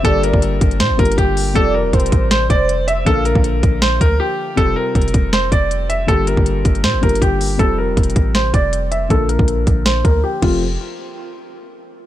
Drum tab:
CC |------------------------------------------------|------------------------------------------------|------------------------------------------------|------------------------------------------------|
HH |x-----x-----x-----x--x--x-----x-x-x-x-----o-----|x-----------x-x-x-x-----x-----x-----x-----x-----|x-----x-----x-----x-----x-----x-----------------|x-----------x-x-x-x-----x-----x-----x-----x-----|
SD |------------------------o-----------------------|------------------------o-----------------------|------------------------o-----------------------|------------------------o-----------------------|
BD |o--------o--------o-----------o-----o-----------|o-----------o-----o-----------o-----------------|o--------o--------o-----------o-----------------|o-----------o-----o-----------o-----------------|

CC |------------------------------------------------|------------------------------------------------|------------------------------------------x-----|------------------------------------------------|
HH |x-----x-----x-----x--x--x-----x-x-x-x-----o-----|x-----------x-x-x-x-----x-----x-----x-----x-----|x-----x-----x-----x-----x-----x-----------------|------------------------------------------------|
SD |------------------------o-----------------------|------------------------o-----------------------|------------------------o-----------------------|------------------------------------------------|
BD |o--------o--------o-----------o-----o-----------|o-----------o-----o-----------o-----------------|o--------o--------o-----------o-----------o-----|------------------------------------------------|